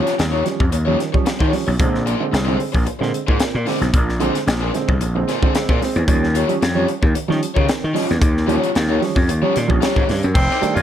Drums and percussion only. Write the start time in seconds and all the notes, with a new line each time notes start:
0.07 snare, closed hi-hat
0.19 snare, closed hi-hat
0.46 snare, closed hi-hat
0.60 kick
0.72 closed hi-hat
1.00 snare, closed hi-hat
1.14 kick
1.26 snare, closed hi-hat
1.40 kick
1.53 snare, open hi-hat
1.80 kick, closed hi-hat
1.95 snare
2.07 closed hi-hat
2.34 snare, closed hi-hat
2.60 open hi-hat
2.74 kick
2.87 closed hi-hat
3.03 snare
3.14 closed hi-hat
3.28 kick
3.40 snare, closed hi-hat
3.66 snare, open hi-hat
3.82 snare, closed hi-hat
3.94 kick, closed hi-hat
4.09 snare
4.20 closed hi-hat
4.35 snare, closed hi-hat
4.48 snare, closed hi-hat
4.74 snare, closed hi-hat
4.89 kick
5.01 closed hi-hat
5.29 snare, closed hi-hat
5.43 kick
5.55 snare, closed hi-hat
5.69 kick
5.82 snare, open hi-hat
5.96 closed hi-hat
6.08 kick, closed hi-hat
6.24 snare
6.35 closed hi-hat
6.49 closed hi-hat
6.62 snare, closed hi-hat
6.88 closed hi-hat
7.03 kick
7.15 closed hi-hat
7.31 snare
7.43 closed hi-hat
7.56 kick
7.69 snare, closed hi-hat
7.96 snare, open hi-hat
8.11 snare, closed hi-hat
8.22 kick, closed hi-hat
8.37 snare
8.49 closed hi-hat
8.63 closed hi-hat
8.75 snare, closed hi-hat
9.02 snare, open hi-hat
9.16 kick
9.29 closed hi-hat
9.56 snare, closed hi-hat
9.70 kick
9.82 snare, closed hi-hat
9.96 kick
10.09 snare, open hi-hat
10.23 closed hi-hat
10.35 kick, crash
10.51 snare
10.63 closed hi-hat
10.77 closed hi-hat